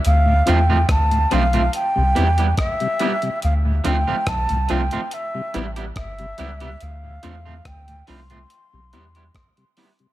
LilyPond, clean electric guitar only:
\new Staff \with { instrumentName = "Clean electric guitar" } { \time 4/4 \key c \major \tempo 4 = 71 r8 <f a c' f'>16 <f a c' f'>16 r8 <f a c' f'>16 <f a c' f'>16 r8 <g b e' g'>16 <g b e' g'>16 r8 <g b e' g'>16 r16 | r8 <f a c' f'>16 <f a c' f'>16 r8 <f a c' f'>16 <f a c' f'>16 r8 <g b e' g'>16 <g b e' g'>16 r8 <g b e' g'>16 <g b e' g'>16 | r8 <f a c' f'>16 <f a c' f'>16 r8 <f a c' f'>16 <f a c' f'>16 r8 <g b e' g'>16 <g b e' g'>16 r8 <g b e' g'>16 r16 | }